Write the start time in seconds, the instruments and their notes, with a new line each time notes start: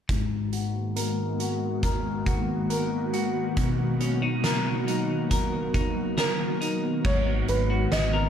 0.08 clean electric guitar G#2, ambient pad D#3 G#3 A#3 B3 F#4, kick, closed hi-hat
0.53 clean electric guitar F#4, closed hi-hat
0.96 clean electric guitar A#4, closed hi-hat
1.40 clean electric guitar F#4, closed hi-hat
1.83 clean electric guitar A#4, kick, closed hi-hat
2.26 clean electric guitar F#4, kick, closed hi-hat
2.70 clean electric guitar A#4, closed hi-hat
3.13 clean electric guitar F#4, closed hi-hat
3.57 clean electric guitar B2, ambient pad F#3, kick, closed hi-hat
4.00 clean electric guitar C#4, closed hi-hat
4.22 clean electric guitar D#4
4.44 clean electric guitar A#4, snare, closed hi-hat
4.87 clean electric guitar D#4, closed hi-hat
5.31 clean electric guitar A#4, kick, closed hi-hat
5.74 clean electric guitar D#4, kick, closed hi-hat
6.18 clean electric guitar A#4, felt piano A#4, snare, closed hi-hat
6.61 clean electric guitar D#4, closed hi-hat
7.04 analog synth bass G#1, clean electric guitar G#2, ambient pad D#3 G#3 B3 F#4, felt piano C#5, kick, crash
7.26 clean electric guitar B3
7.48 analog synth bass G#1, felt piano B4, closed hi-hat
7.70 clean electric guitar F#4
7.92 analog synth bass G#1, clean electric guitar B3, felt piano D#5, snare, closed hi-hat
8.13 clean electric guitar A#4